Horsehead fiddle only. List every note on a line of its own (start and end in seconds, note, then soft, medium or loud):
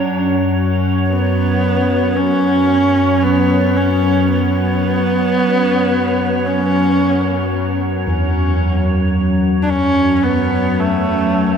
1.08 2.17 B3 medium
2.16 3.24 C#4 medium
3.23 3.78 B3 medium
3.77 4.30 C#4 medium
4.31 6.47 B3 medium
6.46 7.53 C#4 medium
9.63 9.71 D4 medium
9.70 10.25 C#4 loud
10.23 10.81 B3 medium
10.80 11.57 A3 medium